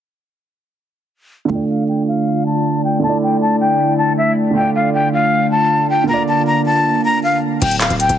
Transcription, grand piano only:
1.45 2.97 D3 medium
1.45 2.99 A3 medium
1.55 3.02 D5 medium
2.99 4.49 D3 medium
2.99 4.52 A3 medium
3.06 4.54 E4 medium
3.06 4.56 D5 medium
4.51 6.02 D3 medium
4.51 6.05 A3 medium
4.57 6.06 F4 medium
4.57 6.08 D5 medium
6.04 7.56 D3 medium
6.04 7.58 A#3 medium
6.10 7.59 F4 medium
6.10 7.61 D5 medium

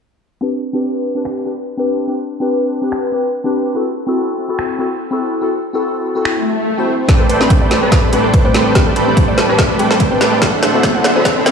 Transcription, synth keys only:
0.41 0.48 C4 medium
0.41 0.49 D4 medium
0.41 0.49 G4 medium
0.41 0.49 B4 medium
0.73 1.13 C4 medium
0.73 1.13 D4 medium
0.73 1.13 G4 medium
0.73 1.14 B4 medium
1.15 1.43 C4 medium
1.15 1.44 D4 medium
1.15 1.44 G4 medium
1.15 1.44 B4 medium
1.45 1.52 C4 medium
1.45 1.53 D4 medium
1.45 1.53 G4 medium
1.45 1.53 B4 medium
1.77 2.06 C4 medium
1.77 2.06 D4 medium
1.77 2.07 G4 medium
1.77 2.07 B4 medium
2.07 2.15 C4 medium
2.07 2.15 D4 medium
2.07 2.15 G4 medium
2.07 2.16 B4 medium
2.40 2.79 C4 medium
2.40 2.80 D4 medium
2.40 2.80 G4 medium
2.40 2.80 B4 medium
2.82 3.10 C4 medium
2.82 3.10 D4 medium
2.82 3.11 G4 medium
2.82 3.11 B4 medium
3.12 3.19 C4 medium
3.12 3.20 D4 medium
3.12 3.20 G4 medium
3.12 3.20 B4 medium
3.44 3.73 C4 medium
3.44 3.73 D4 medium
3.44 3.73 G4 medium
3.44 3.74 B4 medium
3.74 3.82 C4 medium
3.74 3.82 E4 medium
3.74 3.82 F#4 medium
3.74 3.83 A4 medium
4.07 4.46 C4 medium
4.07 4.46 E4 medium
4.07 4.47 F#4 medium
4.07 4.47 A4 medium
4.48 4.77 C4 medium
4.48 4.77 E4 medium
4.48 4.77 F#4 medium
4.48 4.78 A4 loud
4.79 4.86 C4 medium
4.79 4.86 E4 medium
4.79 4.86 F#4 medium
4.79 4.87 A4 medium
5.11 5.39 C4 medium
5.11 5.40 E4 medium
5.11 5.40 F#4 medium
5.11 5.40 A4 medium
5.41 5.48 C4 medium
5.41 5.49 E4 medium
5.41 5.49 F#4 medium
5.41 5.49 A4 medium
5.73 6.13 C4 medium
5.73 6.13 E4 medium
5.73 6.13 F#4 medium
5.73 6.14 A4 loud
6.15 6.44 C4 medium
6.15 6.44 E4 medium
6.15 6.44 F#4 medium
6.15 6.44 A4 medium
6.77 7.06 C4 medium
6.77 7.06 E4 medium
6.77 7.07 F#4 medium
6.77 7.07 C5 medium
7.08 7.15 C4 medium
7.08 7.15 D4 medium
7.08 7.16 G4 medium
7.08 7.16 B4 medium
7.40 7.79 C4 medium
7.40 7.80 D4 medium
7.40 7.80 G4 medium
7.40 7.80 B5 medium
7.81 8.10 C4 medium
7.81 8.10 D4 medium
7.81 8.11 G4 medium
7.81 8.11 B4 medium
8.12 8.19 C4 medium
8.12 8.19 D4 medium
8.12 8.20 G4 medium
8.12 8.20 B4 medium
8.44 8.73 C4 medium
8.44 8.73 D4 medium
8.44 8.73 G4 medium
8.44 8.74 B4 medium
8.74 8.82 C4 medium
8.74 8.82 D4 medium
8.74 8.82 G4 medium
8.74 8.83 B4 medium
9.06 9.46 C4 medium
9.06 9.46 D4 medium
9.06 9.47 G4 medium
9.06 9.47 B5 medium
9.48 9.77 C4 medium
9.48 9.77 D4 medium
9.48 9.77 G4 medium
9.48 9.78 B4 medium
9.78 9.86 C4 medium
9.78 9.86 D4 medium
9.78 9.86 G4 medium
9.78 9.87 B4 medium
10.11 10.39 C4 medium
10.11 10.40 D4 medium
10.11 10.40 G4 medium
10.11 10.40 B4 medium
10.41 10.48 C4 medium
10.41 10.49 E4 medium
10.41 10.49 F#4 medium
10.41 10.49 A4 medium
10.73 11.13 C4 medium
10.73 11.13 E4 medium
10.73 11.13 F#4 medium
10.73 11.14 A4 loud
11.15 11.43 C4 medium
11.15 11.44 E4 medium
11.15 11.44 F#4 medium
11.15 11.44 A4 loud
11.45 11.51 C4 medium
11.45 11.51 E4 medium
11.45 11.51 F#4 medium
11.45 11.51 A4 medium

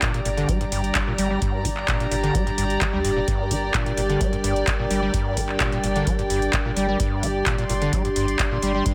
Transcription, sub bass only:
0.25 0.45 G1 loud
0.72 0.91 G1 medium
1.07 1.17 G1 medium
1.18 1.38 G1 medium
1.65 1.84 G1 medium
2.12 2.31 G1 loud
2.58 2.77 G1 medium
2.93 3.03 D2 medium
3.05 3.24 F1 medium
3.51 3.71 G1 medium
3.98 4.17 G1 loud
4.44 4.64 G1 medium
4.79 4.89 G1 medium
4.91 5.10 G1 medium
5.37 5.57 G1 medium
5.84 6.03 G1 loud
6.30 6.50 G1 medium
6.65 6.75 G1 medium
6.77 6.96 G1 medium
7.23 7.43 G1 medium
7.70 7.89 G1 loud
8.16 8.36 G1 medium
8.51 8.61 G1 medium
8.63 8.82 G1 medium

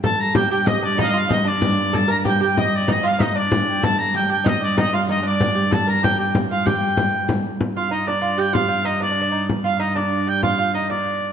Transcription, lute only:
0.04 0.35 A4 medium
0.36 0.50 G4 medium
0.51 0.84 G4 medium
0.83 0.97 D4 medium
0.98 1.13 D#4 medium
1.13 1.28 F4 medium
1.29 1.44 D#4 medium
1.45 1.94 D4 medium
1.93 2.08 A4 medium
2.08 2.24 A#4 medium
2.25 2.40 G4 medium
2.41 2.90 G4 medium
2.88 3.03 D#4 medium
3.03 3.18 F4 medium
3.19 3.35 D#4 medium
3.35 3.84 D4 medium
3.83 4.13 A4 medium
4.14 4.28 G4 medium
4.29 4.46 G4 medium
4.44 4.60 D#4 medium
4.61 4.77 D4 medium
4.77 4.93 D#4 medium
4.93 5.09 F4 medium
5.09 5.22 D#4 medium
5.23 5.53 D4 medium
5.55 5.70 G4 medium
5.70 5.87 A4 medium
5.87 6.02 A#4 medium
6.03 6.17 G4 medium
6.18 6.33 G4 medium
6.51 6.65 F4 medium
6.66 7.25 G4 medium
7.77 7.90 F4 medium
7.91 8.07 D#4 medium
8.08 8.21 D4 medium
8.21 8.39 F4 medium
8.38 8.55 G4 medium
8.53 8.67 F4 medium
8.69 8.84 F4 medium
8.85 9.00 D#4 medium
9.00 9.10 D4 medium
9.11 9.20 D4 medium
9.21 9.31 D4 medium
9.32 9.47 D#4 medium
9.64 9.79 F4 medium
9.79 9.95 D#4 medium
9.96 10.28 D4 medium
10.27 10.43 G4 medium
10.42 10.57 F4 medium
10.58 10.74 F4 medium
10.75 10.89 D#4 medium
10.90 11.33 D4 medium

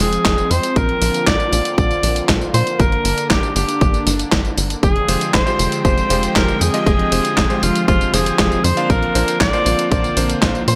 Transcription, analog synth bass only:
0.00 0.18 F1 medium
0.25 0.44 F1 medium
0.51 0.60 F2 medium
0.76 0.95 A#1 loud
1.02 1.11 A#1 medium
1.27 1.36 A#1 medium
1.52 1.62 A#1 medium
1.78 1.96 A#1 medium
2.03 2.22 A#1 medium
2.29 2.47 A#1 medium
2.54 2.63 A#2 medium
2.80 2.98 G1 loud
3.05 3.14 G1 medium
3.30 3.40 G1 medium
3.56 3.65 G1 medium
3.81 4.00 G1 medium
4.07 4.25 G1 medium
4.32 4.51 G1 medium
4.57 4.76 G1 medium
4.83 5.01 F1 loud
5.08 5.18 F1 medium
5.34 5.43 F1 medium
5.59 5.68 F1 medium
5.85 6.03 F1 medium
6.10 6.29 F1 medium
6.36 6.54 F1 medium
6.61 6.70 F2 medium
6.86 7.05 F1 loud
7.12 7.21 F1 medium
7.37 7.47 F1 loud
7.63 7.72 F1 medium
7.88 8.07 F1 medium
8.14 8.32 F1 medium
8.39 8.57 F1 medium
8.64 8.74 F2 medium
8.90 9.08 A#1 loud
9.15 9.24 A#1 medium
9.41 9.50 A#1 loud
9.66 9.75 A#1 medium
9.92 10.10 A#1 medium
10.17 10.35 A#1 medium
10.42 10.61 A#1 medium
10.68 10.75 A#2 medium

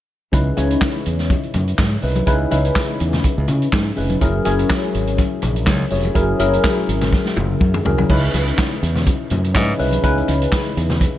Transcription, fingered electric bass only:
0.33 0.51 C#2 medium
0.58 0.75 C#2 medium
1.07 1.33 E2 medium
1.55 1.72 F#2 medium
1.79 1.96 G#2 medium
2.03 2.21 C2 medium
2.28 2.45 C#2 loud
2.52 2.69 C#2 medium
3.01 3.18 E2 medium
3.38 3.46 C#2 medium
3.49 3.66 C#3 medium
3.73 3.90 G#2 medium
3.98 4.15 F1 medium
4.22 4.39 F#1 medium
4.47 4.64 F#1 medium
4.95 5.21 G#1 medium
5.43 5.67 A#1 medium
5.67 5.84 C#2 medium
5.92 6.09 F1 medium
6.16 6.33 F#1 medium
6.40 6.57 F#1 medium
6.89 7.15 G#1 medium
7.37 7.54 F#1 medium
7.61 7.79 F#2 medium
7.85 8.03 C2 medium
8.10 8.27 C#2 medium
8.34 8.51 C#2 loud
8.83 9.09 E2 medium
9.31 9.56 F#2 medium
9.56 9.73 G#2 medium
9.80 9.97 C2 medium
10.04 10.21 C#2 medium
10.29 10.46 C#2 medium
10.77 11.04 E2 medium

